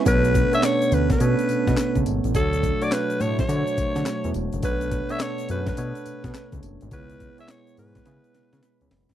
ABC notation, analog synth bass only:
X:1
M:4/4
L:1/16
Q:"Swing 16ths" 1/4=105
K:Bdor
V:1 name="Analog synth bass" clef=bass
B,,,3 z3 D,,2 B,, z B,, B,, z C,, G,,, A,,, | D,,3 z3 A,,2 D, z D, D, z E,, E,,, F,,, | B,,,3 z3 F,,2 B,, z B,, B,, z C,, F,,, G,,, | C,,3 z3 G,,2 C, z C, C, z C,, F,,, G,,, |]